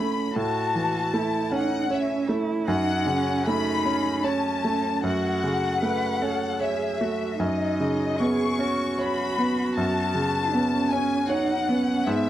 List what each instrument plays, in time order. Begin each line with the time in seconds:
Already playing: grand piano A2 E3 A3 C#4 C#5, cello C#4, violin section B5
0.35 grand piano A2, cello F#4, violin section A5
0.75 grand piano E3
1.14 grand piano A3, cello E4
1.52 grand piano C#4, cello D#4, violin section F#5
1.90 cello C#4, grand piano C#5, violin section E5
2.28 grand piano A3, cello E4
2.67 grand piano F#2, cello D#4, violin section F#5
3.06 grand piano C#3, cello C#4
3.47 grand piano A3, cello D#4, violin section B5
3.85 grand piano C#4
4.24 cello C#4, grand piano C#5, violin section A5
4.64 grand piano A3
5.03 grand piano F#2, cello F#4, violin section F#5
5.44 grand piano C#3
5.81 grand piano A3, cello B4
6.22 grand piano C#4, cello A4
6.61 cello G#4, grand piano C#5, violin section E5
7.01 grand piano A3, cello F#4
7.39 grand piano F#2, cello D#4, violin section D#5
7.80 grand piano C#3
8.20 grand piano B3, cello G#4, violin section C#6
8.59 grand piano C#4, cello F#4
8.98 grand piano C#5, violin section B5
9.38 grand piano B3
9.75 grand piano F#2, violin section A5
10.15 grand piano C#3
10.52 grand piano B3, cello C#4
10.91 grand piano C#4, violin section G#5
11.29 cello D#4, grand piano C#5, violin section F#5
11.68 grand piano B3, cello C#4
12.06 grand piano G#2, cello B3, violin section E5